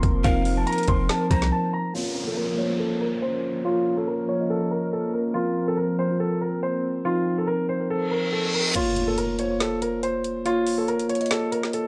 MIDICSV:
0, 0, Header, 1, 10, 480
1, 0, Start_track
1, 0, Key_signature, -5, "minor"
1, 0, Tempo, 425532
1, 274, Time_signature, 4, 2, 24, 8
1, 13394, End_track
2, 0, Start_track
2, 0, Title_t, "Pan flute"
2, 0, Program_c, 0, 75
2, 273, Note_on_c, 0, 70, 116
2, 1428, Note_off_c, 0, 70, 0
2, 1472, Note_on_c, 0, 72, 86
2, 1701, Note_off_c, 0, 72, 0
2, 13394, End_track
3, 0, Start_track
3, 0, Title_t, "Grand piano"
3, 0, Program_c, 1, 0
3, 0, Note_on_c, 1, 84, 86
3, 247, Note_off_c, 1, 84, 0
3, 273, Note_on_c, 1, 77, 105
3, 619, Note_off_c, 1, 77, 0
3, 646, Note_on_c, 1, 81, 76
3, 735, Note_off_c, 1, 81, 0
3, 753, Note_on_c, 1, 82, 102
3, 946, Note_off_c, 1, 82, 0
3, 993, Note_on_c, 1, 84, 86
3, 1187, Note_off_c, 1, 84, 0
3, 1239, Note_on_c, 1, 81, 90
3, 1430, Note_off_c, 1, 81, 0
3, 1475, Note_on_c, 1, 82, 85
3, 1668, Note_off_c, 1, 82, 0
3, 1714, Note_on_c, 1, 81, 85
3, 1907, Note_off_c, 1, 81, 0
3, 1956, Note_on_c, 1, 82, 67
3, 2148, Note_off_c, 1, 82, 0
3, 2195, Note_on_c, 1, 65, 86
3, 2540, Note_off_c, 1, 65, 0
3, 2559, Note_on_c, 1, 69, 71
3, 2651, Note_off_c, 1, 69, 0
3, 2672, Note_on_c, 1, 70, 81
3, 2866, Note_off_c, 1, 70, 0
3, 2912, Note_on_c, 1, 73, 77
3, 3106, Note_off_c, 1, 73, 0
3, 3156, Note_on_c, 1, 69, 80
3, 3348, Note_off_c, 1, 69, 0
3, 3394, Note_on_c, 1, 70, 75
3, 3587, Note_off_c, 1, 70, 0
3, 3633, Note_on_c, 1, 72, 80
3, 4085, Note_off_c, 1, 72, 0
3, 4116, Note_on_c, 1, 65, 100
3, 4460, Note_off_c, 1, 65, 0
3, 4483, Note_on_c, 1, 69, 76
3, 4573, Note_off_c, 1, 69, 0
3, 4596, Note_on_c, 1, 70, 87
3, 4788, Note_off_c, 1, 70, 0
3, 4835, Note_on_c, 1, 73, 80
3, 5028, Note_off_c, 1, 73, 0
3, 5077, Note_on_c, 1, 69, 90
3, 5269, Note_off_c, 1, 69, 0
3, 5315, Note_on_c, 1, 70, 76
3, 5508, Note_off_c, 1, 70, 0
3, 5561, Note_on_c, 1, 69, 77
3, 5751, Note_off_c, 1, 69, 0
3, 5793, Note_on_c, 1, 70, 63
3, 5987, Note_off_c, 1, 70, 0
3, 6024, Note_on_c, 1, 65, 90
3, 6374, Note_off_c, 1, 65, 0
3, 6406, Note_on_c, 1, 69, 80
3, 6495, Note_off_c, 1, 69, 0
3, 6511, Note_on_c, 1, 70, 80
3, 6705, Note_off_c, 1, 70, 0
3, 6754, Note_on_c, 1, 72, 83
3, 6947, Note_off_c, 1, 72, 0
3, 6992, Note_on_c, 1, 69, 82
3, 7186, Note_off_c, 1, 69, 0
3, 7236, Note_on_c, 1, 70, 75
3, 7428, Note_off_c, 1, 70, 0
3, 7476, Note_on_c, 1, 72, 81
3, 7926, Note_off_c, 1, 72, 0
3, 7953, Note_on_c, 1, 65, 95
3, 8299, Note_off_c, 1, 65, 0
3, 8326, Note_on_c, 1, 69, 72
3, 8415, Note_off_c, 1, 69, 0
3, 8430, Note_on_c, 1, 70, 95
3, 8625, Note_off_c, 1, 70, 0
3, 8673, Note_on_c, 1, 72, 79
3, 8867, Note_off_c, 1, 72, 0
3, 8915, Note_on_c, 1, 69, 88
3, 9108, Note_off_c, 1, 69, 0
3, 9151, Note_on_c, 1, 70, 79
3, 9345, Note_off_c, 1, 70, 0
3, 9391, Note_on_c, 1, 69, 79
3, 9585, Note_off_c, 1, 69, 0
3, 9636, Note_on_c, 1, 70, 66
3, 9828, Note_off_c, 1, 70, 0
3, 9875, Note_on_c, 1, 65, 94
3, 10220, Note_off_c, 1, 65, 0
3, 10239, Note_on_c, 1, 69, 79
3, 10331, Note_off_c, 1, 69, 0
3, 10352, Note_on_c, 1, 70, 83
3, 10546, Note_off_c, 1, 70, 0
3, 10595, Note_on_c, 1, 73, 82
3, 10787, Note_off_c, 1, 73, 0
3, 10838, Note_on_c, 1, 69, 82
3, 11030, Note_off_c, 1, 69, 0
3, 11076, Note_on_c, 1, 70, 76
3, 11268, Note_off_c, 1, 70, 0
3, 11314, Note_on_c, 1, 72, 85
3, 11765, Note_off_c, 1, 72, 0
3, 11796, Note_on_c, 1, 65, 106
3, 12140, Note_off_c, 1, 65, 0
3, 12160, Note_on_c, 1, 69, 80
3, 12252, Note_off_c, 1, 69, 0
3, 12275, Note_on_c, 1, 70, 92
3, 12468, Note_off_c, 1, 70, 0
3, 12515, Note_on_c, 1, 73, 82
3, 12708, Note_off_c, 1, 73, 0
3, 12757, Note_on_c, 1, 69, 93
3, 12949, Note_off_c, 1, 69, 0
3, 12993, Note_on_c, 1, 70, 81
3, 13186, Note_off_c, 1, 70, 0
3, 13240, Note_on_c, 1, 69, 79
3, 13394, Note_off_c, 1, 69, 0
3, 13394, End_track
4, 0, Start_track
4, 0, Title_t, "Tine electric piano"
4, 0, Program_c, 2, 4
4, 0, Control_c, 2, 64, 127
4, 0, Note_on_c, 2, 53, 76
4, 0, Note_on_c, 2, 60, 71
4, 0, Note_on_c, 2, 65, 88
4, 0, Note_on_c, 2, 70, 93
4, 272, Note_off_c, 2, 53, 0
4, 272, Note_on_c, 2, 53, 99
4, 280, Note_off_c, 2, 60, 0
4, 280, Note_on_c, 2, 60, 91
4, 287, Note_on_c, 2, 63, 108
4, 613, Note_off_c, 2, 53, 0
4, 616, Note_off_c, 2, 60, 0
4, 620, Note_off_c, 2, 63, 0
4, 635, Note_on_c, 2, 53, 76
4, 643, Note_on_c, 2, 60, 71
4, 650, Note_off_c, 2, 70, 0
4, 650, Note_on_c, 2, 70, 83
4, 966, Note_off_c, 2, 53, 0
4, 970, Note_off_c, 2, 60, 0
4, 974, Note_off_c, 2, 70, 0
4, 982, Note_on_c, 2, 53, 75
4, 989, Note_on_c, 2, 60, 72
4, 996, Note_on_c, 2, 72, 87
4, 1098, Note_off_c, 2, 53, 0
4, 1106, Note_off_c, 2, 60, 0
4, 1112, Note_on_c, 2, 53, 75
4, 1113, Note_off_c, 2, 72, 0
4, 1120, Note_on_c, 2, 60, 68
4, 1127, Note_on_c, 2, 70, 80
4, 2002, Note_off_c, 2, 53, 0
4, 2006, Note_off_c, 2, 60, 0
4, 2009, Note_off_c, 2, 70, 0
4, 2186, Note_on_c, 2, 58, 91
4, 2194, Note_off_c, 2, 65, 0
4, 2194, Note_on_c, 2, 65, 86
4, 2200, Note_on_c, 2, 73, 108
4, 2207, Control_c, 2, 64, 0
4, 2385, Control_c, 2, 64, 127
4, 2529, Note_off_c, 2, 58, 0
4, 2533, Note_off_c, 2, 65, 0
4, 2536, Note_off_c, 2, 73, 0
4, 2551, Note_on_c, 2, 58, 74
4, 2559, Note_on_c, 2, 65, 69
4, 2567, Note_on_c, 2, 70, 72
4, 2884, Note_off_c, 2, 58, 0
4, 2888, Note_off_c, 2, 65, 0
4, 2892, Note_off_c, 2, 70, 0
4, 2905, Note_on_c, 2, 58, 76
4, 2912, Note_on_c, 2, 65, 70
4, 2919, Note_on_c, 2, 72, 80
4, 3022, Note_off_c, 2, 58, 0
4, 3031, Note_off_c, 2, 65, 0
4, 3035, Note_off_c, 2, 72, 0
4, 3035, Note_on_c, 2, 58, 73
4, 3043, Note_on_c, 2, 65, 67
4, 3050, Note_on_c, 2, 73, 75
4, 3924, Note_off_c, 2, 58, 0
4, 3928, Note_off_c, 2, 65, 0
4, 3931, Note_off_c, 2, 73, 0
4, 4105, Note_on_c, 2, 58, 87
4, 4112, Note_on_c, 2, 65, 88
4, 4119, Note_on_c, 2, 73, 100
4, 4449, Note_off_c, 2, 58, 0
4, 4453, Note_off_c, 2, 65, 0
4, 4456, Note_off_c, 2, 73, 0
4, 4473, Note_on_c, 2, 58, 67
4, 4480, Note_on_c, 2, 65, 61
4, 4487, Note_on_c, 2, 73, 73
4, 4805, Note_off_c, 2, 58, 0
4, 4809, Note_off_c, 2, 65, 0
4, 4812, Note_off_c, 2, 73, 0
4, 4821, Note_on_c, 2, 58, 75
4, 4829, Note_on_c, 2, 65, 70
4, 4836, Note_on_c, 2, 73, 89
4, 4940, Note_off_c, 2, 58, 0
4, 4950, Note_off_c, 2, 65, 0
4, 4953, Note_off_c, 2, 73, 0
4, 4954, Note_on_c, 2, 58, 66
4, 4962, Note_on_c, 2, 65, 65
4, 4968, Note_on_c, 2, 75, 79
4, 5843, Note_off_c, 2, 58, 0
4, 5847, Note_off_c, 2, 65, 0
4, 5850, Note_off_c, 2, 75, 0
4, 6026, Note_on_c, 2, 53, 91
4, 6034, Note_on_c, 2, 60, 89
4, 6042, Note_on_c, 2, 70, 115
4, 6051, Control_c, 2, 64, 0
4, 6244, Control_c, 2, 64, 127
4, 6369, Note_off_c, 2, 53, 0
4, 6373, Note_off_c, 2, 60, 0
4, 6377, Note_off_c, 2, 70, 0
4, 6396, Note_on_c, 2, 53, 73
4, 6404, Note_on_c, 2, 60, 69
4, 6411, Note_on_c, 2, 70, 73
4, 6727, Note_off_c, 2, 53, 0
4, 6731, Note_off_c, 2, 60, 0
4, 6734, Note_off_c, 2, 70, 0
4, 6748, Note_on_c, 2, 53, 78
4, 6755, Note_on_c, 2, 60, 67
4, 6762, Note_on_c, 2, 70, 84
4, 6866, Note_off_c, 2, 53, 0
4, 6873, Note_off_c, 2, 60, 0
4, 6876, Note_off_c, 2, 70, 0
4, 6880, Note_on_c, 2, 53, 69
4, 6887, Note_on_c, 2, 60, 67
4, 6894, Note_on_c, 2, 65, 83
4, 7766, Note_off_c, 2, 53, 0
4, 7770, Note_off_c, 2, 60, 0
4, 7773, Note_off_c, 2, 65, 0
4, 7953, Note_on_c, 2, 53, 96
4, 7960, Note_on_c, 2, 60, 85
4, 7968, Note_on_c, 2, 63, 106
4, 8293, Note_off_c, 2, 53, 0
4, 8296, Note_off_c, 2, 60, 0
4, 8300, Note_off_c, 2, 63, 0
4, 8316, Note_on_c, 2, 53, 69
4, 8323, Note_on_c, 2, 60, 67
4, 8330, Note_on_c, 2, 70, 81
4, 8647, Note_off_c, 2, 53, 0
4, 8650, Note_off_c, 2, 60, 0
4, 8654, Note_off_c, 2, 70, 0
4, 8661, Note_on_c, 2, 53, 75
4, 8668, Note_on_c, 2, 60, 66
4, 8676, Note_on_c, 2, 72, 85
4, 8779, Note_off_c, 2, 53, 0
4, 8787, Note_off_c, 2, 60, 0
4, 8792, Note_on_c, 2, 53, 71
4, 8793, Note_off_c, 2, 72, 0
4, 8800, Note_on_c, 2, 60, 68
4, 8807, Note_on_c, 2, 70, 78
4, 9682, Note_off_c, 2, 53, 0
4, 9686, Note_off_c, 2, 60, 0
4, 9690, Note_off_c, 2, 70, 0
4, 9866, Note_on_c, 2, 58, 94
4, 9873, Note_on_c, 2, 65, 91
4, 9881, Note_on_c, 2, 73, 112
4, 9890, Control_c, 2, 64, 0
4, 10063, Control_c, 2, 64, 127
4, 10210, Note_off_c, 2, 58, 0
4, 10213, Note_off_c, 2, 65, 0
4, 10217, Note_off_c, 2, 73, 0
4, 10233, Note_on_c, 2, 58, 75
4, 10240, Note_on_c, 2, 65, 72
4, 10248, Note_on_c, 2, 70, 72
4, 10565, Note_off_c, 2, 58, 0
4, 10569, Note_off_c, 2, 65, 0
4, 10573, Note_off_c, 2, 70, 0
4, 10584, Note_on_c, 2, 58, 77
4, 10592, Note_on_c, 2, 65, 70
4, 10599, Note_on_c, 2, 72, 83
4, 10703, Note_off_c, 2, 58, 0
4, 10711, Note_off_c, 2, 65, 0
4, 10715, Note_off_c, 2, 72, 0
4, 10717, Note_on_c, 2, 58, 76
4, 10724, Note_on_c, 2, 65, 69
4, 10731, Note_on_c, 2, 73, 78
4, 11604, Note_off_c, 2, 58, 0
4, 11608, Note_off_c, 2, 65, 0
4, 11611, Note_off_c, 2, 73, 0
4, 11786, Note_on_c, 2, 58, 92
4, 11794, Note_on_c, 2, 65, 89
4, 11801, Note_on_c, 2, 73, 109
4, 12130, Note_off_c, 2, 58, 0
4, 12133, Note_off_c, 2, 65, 0
4, 12137, Note_off_c, 2, 73, 0
4, 12152, Note_on_c, 2, 58, 69
4, 12159, Note_on_c, 2, 65, 64
4, 12167, Note_on_c, 2, 73, 77
4, 12485, Note_off_c, 2, 58, 0
4, 12488, Note_off_c, 2, 65, 0
4, 12492, Note_off_c, 2, 73, 0
4, 12501, Note_on_c, 2, 58, 75
4, 12509, Note_on_c, 2, 65, 73
4, 12516, Note_on_c, 2, 73, 91
4, 12621, Note_off_c, 2, 58, 0
4, 12630, Note_off_c, 2, 65, 0
4, 12633, Note_off_c, 2, 73, 0
4, 12634, Note_on_c, 2, 58, 71
4, 12642, Note_on_c, 2, 65, 68
4, 12648, Note_on_c, 2, 75, 81
4, 13394, Note_off_c, 2, 58, 0
4, 13394, Note_off_c, 2, 65, 0
4, 13394, Note_off_c, 2, 75, 0
4, 13394, End_track
5, 0, Start_track
5, 0, Title_t, "Analog synth pad"
5, 0, Program_c, 3, 89
5, 0, Note_on_c, 3, 53, 89
5, 0, Note_on_c, 3, 58, 83
5, 0, Note_on_c, 3, 60, 85
5, 0, Note_on_c, 3, 70, 101
5, 2149, Note_off_c, 3, 70, 0
5, 2156, Note_off_c, 3, 53, 0
5, 2156, Note_off_c, 3, 58, 0
5, 2156, Note_off_c, 3, 60, 0
5, 2193, Note_on_c, 3, 53, 85
5, 2193, Note_on_c, 3, 70, 98
5, 2194, Note_on_c, 3, 61, 78
5, 2195, Note_on_c, 3, 58, 79
5, 5996, Note_off_c, 3, 61, 0
5, 6034, Note_on_c, 3, 60, 77
5, 9829, Note_off_c, 3, 53, 0
5, 9829, Note_off_c, 3, 58, 0
5, 9829, Note_off_c, 3, 70, 0
5, 9836, Note_off_c, 3, 60, 0
5, 13394, End_track
6, 0, Start_track
6, 0, Title_t, "808-style bass"
6, 0, Program_c, 4, 38
6, 35, Note_on_c, 4, 29, 109
6, 265, Note_off_c, 4, 29, 0
6, 274, Note_on_c, 4, 29, 113
6, 735, Note_off_c, 4, 29, 0
6, 994, Note_on_c, 4, 29, 108
6, 1225, Note_off_c, 4, 29, 0
6, 1474, Note_on_c, 4, 36, 111
6, 1705, Note_off_c, 4, 36, 0
6, 13394, End_track
7, 0, Start_track
7, 0, Title_t, "Downlifter"
7, 0, Program_c, 5, 103
7, 2194, Note_on_c, 5, 60, 85
7, 6034, Note_off_c, 5, 60, 0
7, 13394, End_track
8, 0, Start_track
8, 0, Title_t, "Impact"
8, 0, Program_c, 6, 103
8, 9875, Note_on_c, 6, 60, 89
8, 11795, Note_off_c, 6, 60, 0
8, 13394, End_track
9, 0, Start_track
9, 0, Title_t, "Reverse cymbal"
9, 0, Program_c, 7, 119
9, 8914, Note_on_c, 7, 60, 81
9, 9875, Note_off_c, 7, 60, 0
9, 13394, End_track
10, 0, Start_track
10, 0, Title_t, "Drums"
10, 35, Note_on_c, 9, 36, 95
10, 35, Note_on_c, 9, 42, 73
10, 148, Note_off_c, 9, 36, 0
10, 148, Note_off_c, 9, 42, 0
10, 274, Note_on_c, 9, 36, 119
10, 275, Note_on_c, 9, 42, 73
10, 387, Note_off_c, 9, 36, 0
10, 388, Note_off_c, 9, 42, 0
10, 510, Note_on_c, 9, 46, 82
10, 623, Note_off_c, 9, 46, 0
10, 755, Note_on_c, 9, 42, 66
10, 818, Note_off_c, 9, 42, 0
10, 818, Note_on_c, 9, 42, 68
10, 881, Note_off_c, 9, 42, 0
10, 881, Note_on_c, 9, 42, 65
10, 937, Note_off_c, 9, 42, 0
10, 937, Note_on_c, 9, 42, 66
10, 988, Note_off_c, 9, 42, 0
10, 988, Note_on_c, 9, 42, 70
10, 994, Note_on_c, 9, 36, 91
10, 1101, Note_off_c, 9, 42, 0
10, 1107, Note_off_c, 9, 36, 0
10, 1233, Note_on_c, 9, 38, 121
10, 1233, Note_on_c, 9, 42, 67
10, 1346, Note_off_c, 9, 38, 0
10, 1346, Note_off_c, 9, 42, 0
10, 1474, Note_on_c, 9, 36, 90
10, 1476, Note_on_c, 9, 42, 88
10, 1587, Note_off_c, 9, 36, 0
10, 1588, Note_off_c, 9, 42, 0
10, 1601, Note_on_c, 9, 38, 64
10, 1714, Note_off_c, 9, 38, 0
10, 9874, Note_on_c, 9, 42, 73
10, 9874, Note_on_c, 9, 49, 93
10, 9987, Note_off_c, 9, 42, 0
10, 9987, Note_off_c, 9, 49, 0
10, 10110, Note_on_c, 9, 42, 74
10, 10223, Note_off_c, 9, 42, 0
10, 10352, Note_on_c, 9, 42, 77
10, 10465, Note_off_c, 9, 42, 0
10, 10588, Note_on_c, 9, 42, 76
10, 10701, Note_off_c, 9, 42, 0
10, 10834, Note_on_c, 9, 38, 113
10, 10834, Note_on_c, 9, 42, 66
10, 10947, Note_off_c, 9, 38, 0
10, 10947, Note_off_c, 9, 42, 0
10, 11076, Note_on_c, 9, 42, 84
10, 11189, Note_off_c, 9, 42, 0
10, 11315, Note_on_c, 9, 42, 78
10, 11427, Note_off_c, 9, 42, 0
10, 11555, Note_on_c, 9, 42, 71
10, 11668, Note_off_c, 9, 42, 0
10, 11794, Note_on_c, 9, 42, 72
10, 11907, Note_off_c, 9, 42, 0
10, 12031, Note_on_c, 9, 46, 81
10, 12144, Note_off_c, 9, 46, 0
10, 12275, Note_on_c, 9, 42, 48
10, 12388, Note_off_c, 9, 42, 0
10, 12402, Note_on_c, 9, 42, 79
10, 12515, Note_off_c, 9, 42, 0
10, 12515, Note_on_c, 9, 42, 59
10, 12579, Note_off_c, 9, 42, 0
10, 12579, Note_on_c, 9, 42, 58
10, 12643, Note_off_c, 9, 42, 0
10, 12643, Note_on_c, 9, 42, 59
10, 12699, Note_off_c, 9, 42, 0
10, 12699, Note_on_c, 9, 42, 59
10, 12755, Note_on_c, 9, 38, 114
10, 12756, Note_off_c, 9, 42, 0
10, 12756, Note_on_c, 9, 42, 67
10, 12868, Note_off_c, 9, 38, 0
10, 12868, Note_off_c, 9, 42, 0
10, 12998, Note_on_c, 9, 42, 81
10, 13111, Note_off_c, 9, 42, 0
10, 13123, Note_on_c, 9, 38, 61
10, 13235, Note_on_c, 9, 42, 81
10, 13236, Note_off_c, 9, 38, 0
10, 13348, Note_off_c, 9, 42, 0
10, 13394, End_track
0, 0, End_of_file